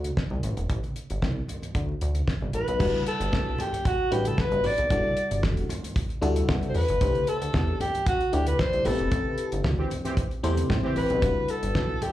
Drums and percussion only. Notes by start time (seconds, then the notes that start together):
0.04 closed hi-hat, high conga
0.16 kick, snare, high conga
0.30 muted conga, high conga
0.43 closed hi-hat, low conga
0.57 closed hi-hat
0.69 kick, closed hi-hat, muted conga
0.83 closed hi-hat, muted conga, high conga
0.96 closed hi-hat
1.10 closed hi-hat
1.22 kick, snare, muted conga, high conga
1.48 closed hi-hat, low conga
1.62 closed hi-hat, low conga
1.75 kick, closed hi-hat
1.89 muted conga
2.01 closed hi-hat
2.14 closed hi-hat, high conga
2.27 kick, snare, high conga
2.41 high conga
2.53 closed hi-hat, low conga
2.68 closed hi-hat
2.80 kick, crash, muted conga
2.93 muted conga, high conga
3.06 closed hi-hat
3.21 closed hi-hat
3.32 kick, snare, muted conga, high conga
3.58 closed hi-hat, low conga
3.73 closed hi-hat, low conga
3.85 kick, closed hi-hat, muted conga
3.98 muted conga
4.12 closed hi-hat
4.25 closed hi-hat, high conga
4.38 kick, snare
4.51 closed hi-hat, high conga
4.64 open hi-hat, low conga
4.78 closed hi-hat
4.90 kick, closed hi-hat, muted conga
5.04 high conga
5.17 closed hi-hat
5.31 closed hi-hat
5.43 kick, snare, muted conga, high conga
5.57 closed hi-hat, muted conga
5.69 closed hi-hat, low conga
5.83 closed hi-hat, low conga
5.96 kick, closed hi-hat, muted conga
6.09 closed hi-hat, muted conga
6.22 closed hi-hat
6.35 closed hi-hat, high conga
6.48 kick, snare, high conga
6.61 closed hi-hat, high conga
6.74 open hi-hat, low conga
6.88 closed hi-hat
7.01 kick, closed hi-hat, muted conga
7.15 closed hi-hat, high conga
7.27 closed hi-hat
7.42 closed hi-hat
7.53 kick, snare, muted conga, high conga
7.68 muted conga
7.80 closed hi-hat, low conga
7.94 closed hi-hat, low conga
8.06 kick, closed hi-hat, muted conga
8.21 closed hi-hat, muted conga
8.33 closed hi-hat
8.47 closed hi-hat, high conga
8.59 kick, snare
8.73 closed hi-hat, muted conga, high conga
8.85 open hi-hat, low conga
8.99 closed hi-hat
9.11 kick, closed hi-hat, muted conga
9.25 high conga
9.38 closed hi-hat
9.52 closed hi-hat
9.64 kick, snare, muted conga, high conga
9.78 muted conga
9.90 closed hi-hat, low conga
10.05 closed hi-hat, low conga
10.17 kick, closed hi-hat, muted conga
10.31 closed hi-hat
10.44 closed hi-hat
10.57 closed hi-hat, high conga
10.69 kick, snare, muted conga, high conga
10.83 muted conga, high conga
10.96 open hi-hat, low conga
11.10 closed hi-hat
11.22 kick, closed hi-hat, muted conga
11.36 high conga
11.48 closed hi-hat
11.63 closed hi-hat
11.75 kick, snare, muted conga, high conga
12.02 closed hi-hat, low conga